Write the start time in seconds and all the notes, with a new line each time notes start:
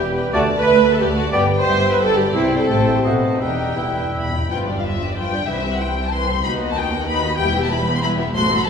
Already playing: G3 B3 G4 B4 G5 B5
0.00 E1 E2 B4
0.16 G5
0.32 D2 A3 F#4 A4 D5 A5
0.50 A5
0.60 B4
0.66 D2 E5
0.83 A5
0.94 A4
1.00 D2 G4 D5
1.16 F#4 A5
1.32 G1 G2 B3 G4 B4 D5 G5
1.50 G5
1.59 C5
1.66 G1 G2 E5
1.84 G5
1.94 B4
2.00 G1 G2 A4 D5
2.18 G4 G5
2.35 C2 C3 C4 E4 C5 E5 G5
2.52 G5
2.61 A4
2.69 A1 A2 A3 C5 E5 G5
2.86 G5
2.97 G4
3.04 B1 B2 A3 F#4 A4 B4 C5 D#5 F#5 A5
3.22 A5
3.33 D#4
3.40 E1 E2 G3 B3 D#4 G4 B4 E5 G5
3.51 E2
3.59 E2 G5
3.67 E2
3.75 E1 E2 G3 E4 B4 E5
3.79 E2 G5
3.92 E2
3.96 G5
4.00 E2
4.07 E2
4.15 E1 E2 B5
4.23 E2
4.30 E2 G5
4.38 E2
4.49 G1 G2 F3 B3 F4 B4 G5
4.67 G3 D4 G4 D5
4.78 F5
4.82 F3 F4 B4 E5
4.98 G3 D4 G4 D5
5.09 D5
5.15 F3 F4 B4 G5
5.31 G3 D4 G4 D5
5.47 C2 E3 B3 E4 B4 C5 E5
5.64 G3 C4 G4 C5
5.73 F#5
5.79 E3 E4 B4 C5 G5
5.96 G3 C4 G4 C5
6.05 A5
6.12 E3 E4 B4 C5 C6
6.28 G3 C4 G4 C5
6.43 D#2 B3 D#4 F#4 B4 B5
6.59 B3 D#4 F#4 D#5
6.68 A5
6.75 D#4 F#4 B4 G5
6.91 B3 D#4 F#4 D#5
7.00 F#5
7.06 D#4 F#4 B4 B5
7.23 B3 D#4 F#4 D#5
7.37 E1 E2 G3 B3 E4 G4 B4 G5
7.55 B3 G4 E5
7.62 A5
7.71 G3 E4 B4 B5
7.87 B3 G4 E5
7.95 C6
8.02 G3 E4 B4 B5
8.17 B3 G4 E5
8.34 A1 A2 F#3 A3 F#4 A4 C5 C6
8.49 F#3 F#4 A4
8.58 B5
8.65 A4 C5 A5